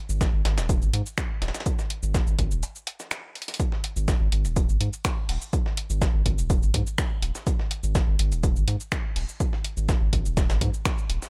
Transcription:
0.09 analog synth bass G#1, shaker
0.21 kick, snare, closed hi-hat, shaker
0.34 analog synth bass G#1
0.45 analog synth bass G#1, snare, closed hi-hat
0.58 analog synth bass D#1, snare, closed hi-hat, shaker
0.69 kick, closed hi-hat, shaker
0.82 analog synth bass G#1, shaker
0.93 analog synth bass G#2, closed hi-hat
1.06 shaker
1.18 finger snap, kick, snare, closed hi-hat, shaker
1.42 analog synth bass D#1, snare, closed hi-hat
1.48 snare, closed hi-hat
1.54 snare, closed hi-hat, shaker
1.60 snare, closed hi-hat
1.66 kick, closed hi-hat, shaker
1.79 snare, shaker
1.90 closed hi-hat
2.03 analog synth bass G#1, shaker
2.14 kick, snare, closed hi-hat, shaker
2.27 analog synth bass G#1, shaker
2.39 analog synth bass G#1, kick, closed hi-hat
2.51 analog synth bass D#1, shaker
2.63 closed hi-hat, shaker
2.75 shaker
2.87 closed hi-hat
3.00 snare, shaker
3.11 finger snap, snare, closed hi-hat, shaker
3.35 closed hi-hat
3.42 closed hi-hat
3.48 snare, closed hi-hat
3.54 closed hi-hat
3.60 kick, closed hi-hat, shaker
3.72 snare
3.84 closed hi-hat
3.96 analog synth bass G#1, shaker
4.08 kick, snare, closed hi-hat, shaker
4.21 analog synth bass G#1
4.32 analog synth bass G#1, closed hi-hat
4.45 analog synth bass D#1, closed hi-hat, shaker
4.56 kick, closed hi-hat, shaker
4.69 analog synth bass G#1, shaker
4.81 analog synth bass G#2, closed hi-hat
4.93 shaker
5.05 finger snap, kick, snare, closed hi-hat, shaker
5.29 analog synth bass D#1, closed hi-hat, open hi-hat
5.42 shaker
5.53 kick, closed hi-hat, shaker
5.66 snare
5.77 closed hi-hat
5.90 analog synth bass G#1, shaker
6.02 kick, snare, closed hi-hat, shaker
6.14 analog synth bass G#1
6.26 analog synth bass G#1, kick, closed hi-hat
6.38 analog synth bass D#1, shaker
6.50 kick, closed hi-hat, shaker
6.62 analog synth bass G#1, shaker
6.74 analog synth bass G#2, kick, closed hi-hat
6.87 shaker
6.98 finger snap, kick, snare, closed hi-hat, shaker
7.22 analog synth bass D#1, closed hi-hat
7.35 snare, shaker
7.47 kick, closed hi-hat, shaker
7.59 snare
7.71 closed hi-hat
7.83 analog synth bass G#1, shaker
7.95 kick, snare, closed hi-hat, shaker
8.08 analog synth bass G#1
8.19 analog synth bass G#1, closed hi-hat
8.32 analog synth bass D#1, closed hi-hat, shaker
8.43 kick, closed hi-hat, shaker
8.56 analog synth bass G#1, shaker
8.68 analog synth bass G#2, closed hi-hat
8.80 shaker
8.92 finger snap, kick, snare, closed hi-hat, shaker
9.16 analog synth bass D#1, closed hi-hat, open hi-hat
9.29 shaker
9.40 kick, closed hi-hat, shaker
9.53 snare
9.64 closed hi-hat
9.77 analog synth bass G#1, shaker
9.89 kick, snare, closed hi-hat, shaker
10.01 analog synth bass G#1
10.13 analog synth bass G#1, kick, closed hi-hat
10.26 analog synth bass D#1, shaker
10.37 kick, snare, closed hi-hat, shaker
10.50 analog synth bass G#1, snare, closed hi-hat, shaker
10.61 analog synth bass G#2, kick, closed hi-hat
10.74 shaker
10.85 finger snap, kick, snare, closed hi-hat, shaker
10.98 shaker
11.10 analog synth bass D#1, closed hi-hat
11.22 snare, shaker

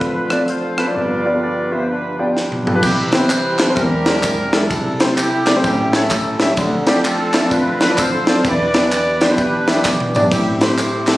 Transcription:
Already playing: grand piano D2 D3, tonewheel organ F3 C4 D4 A4, french horn section C4 D4 F4 A4, horn section F4 B4
0.01 kick, closed hi-hat
0.30 grand piano C4 F4 A4 D5, cross-stick, closed hi-hat
0.48 horn section F4 A4 C5, closed hi-hat
0.78 grand piano C4 F4 A4 B4, cross-stick, closed hi-hat
0.87 grand piano C4 F4 A4 D5
0.95 grand piano G1 G2, tonewheel organ F3 B3 G4, french horn section B3 D4 G4, horn section F4 B4 D5
1.25 grand piano B3 F4 G4 D5
1.34 grand piano B3 F4 G4 A4
1.42 horn section D5
1.72 grand piano B3 F4 G4 E5, horn section C5
1.89 horn section D4 F4 B4
2.19 grand piano B3 F4 G4 D5, horn section B3 D4 G4
2.37 snare
2.52 mid tom
2.66 grand piano B3 F4 G4 A4, floor tom
2.75 grand piano B3 F4 G4 B4
2.83 grand piano C2 C3, tonewheel organ E3 G3 C4 G4, horn section E4 G4 B4, kick, crash, tambourine
3.12 grand piano B3 C4 E4 G4 C5, horn section E4 G4 C5, snare, ride, tambourine
3.30 clap, ride, tambourine
3.59 grand piano B3 C4 E4 G4 A4, snare, clap, ride, tambourine
3.69 grand piano B3 C4 E4 G4 C5
3.76 grand piano E2 E3, tonewheel organ G#3 C4 D4, horn section D4 G4 A#4, kick, ride, tambourine
4.06 grand piano G#3 D4 E4 G4 C5, snare, ride, tambourine
4.16 grand piano G#3 D4 E4 G4 A#4
4.23 kick, clap, ride, tambourine
4.52 grand piano G#3 D4 E4 G4 A#4, horn section E4 A4, snare, ride, tambourine
4.70 grand piano C2 C3, tonewheel organ C3 G3 E4 A4, kick, ride, tambourine
5.00 grand piano A3 C4 E4 G4 C5, snare, ride, tambourine
5.17 horn section E4 G4, clap, ride, tambourine
5.46 grand piano A3 C4 E4 G4 D5, snare, clap, ride, tambourine
5.56 grand piano A3 C4 E4 G4 C5
5.64 grand piano A1 A2, tonewheel organ C#4, horn section C#4 E4 G4, kick, ride, tambourine
5.93 grand piano A3 C#4 E4 G4 C#5, horn section C#4 E4 A4, snare, ride, tambourine
6.03 grand piano A3 C#4 E4 G4 E5
6.10 kick, clap, ride, tambourine
6.40 grand piano A3 C#4 E4 G4 E5, snare, ride, tambourine
6.57 grand piano D2 D3, tonewheel organ F3 C4 D4 A4, kick, ride, tambourine
6.87 grand piano C4 D4 F4 A4 D5, horn section G4, snare, ride, tambourine
7.05 horn section C4 F4 A4, clap, ride, tambourine
7.33 grand piano C4 D4 F4 A4 E5, snare, clap, ride, tambourine
7.43 grand piano C4 D4 F4 A4 D5
7.51 horn section F4 B4, kick, ride, tambourine
7.81 grand piano C4 D4 F4 A4 B4, horn section B4, snare, ride, tambourine
7.90 grand piano C4 D4 F4 A4 D5
7.98 horn section F4 A4 C5, kick, clap, ride, tambourine
8.27 grand piano C4 D4 F4 A4 D5, snare, ride, tambourine
8.45 grand piano E2 E3, tonewheel organ E3 B3 G4, horn section G4 B4 D5, kick, ride, tambourine
8.74 grand piano B3 D4 E4 G4 D5, snare, ride, tambourine
8.92 horn section D5, clap, ride, tambourine
9.21 grand piano B3 D4 E4 G4 D5, horn section C5, snare, ride, tambourine
9.30 grand piano B3 D4 E4 G4 B4
9.38 horn section D4 G4 B4, kick, ride, tambourine
9.67 grand piano B3 D4 E4 G4 E5, horn section B3 D4 G4, snare, ride, tambourine
9.76 grand piano B3 D4 E4 G4 B4
9.85 kick, snare, clap, tambourine
10.00 mid tom
10.15 grand piano B3 D4 E4 G4 D5, floor tom, tambourine
10.32 grand piano A1 A2, tonewheel organ G3 C4 E4 A4, horn section C4 E4 G4, kick, tambourine, splash
10.61 grand piano A3 C4 E4 G4 C5, horn section E4 G4 C5, snare, ride, tambourine
10.78 clap, ride, tambourine
11.07 grand piano A3 C4 E4 G4 A4, snare, clap, ride, tambourine

